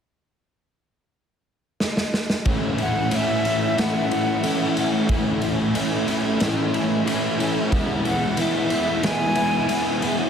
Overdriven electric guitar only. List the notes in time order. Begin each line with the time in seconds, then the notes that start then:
2.45 A2 E3 A3 C#4 E4
2.79 A3 C#4 E4
3.12 E3 A3 C#4 E4
3.44 A3 C#4 E4
3.77 A2 E3 A3 C#4 E4
4.11 A3 C#4 E4
4.44 E3 A3 C#4 E4
4.76 A3 C#4 E4
5.09 A2 E3 A3 C#4 E4
5.41 A3 C#4 E4
5.74 E3 A3 C#4 E4
6.08 A3 C#4 E4
6.41 A2 E3 A3 C#4 E4
6.73 A3 C#4 E4
7.06 E3 A3 C#4 E4
7.39 A3 C#4 E4
7.71 E3 G#3 B3 E4
8.05 G#3 B3 E4
8.37 E3 G#3 B3 E4
8.70 G#3 B3 E4
9.03 E3 G#3 B3 E4
9.36 G#3 B3 E4
9.68 E3 G#3 B3 E4
10.02 G#3 B3 E4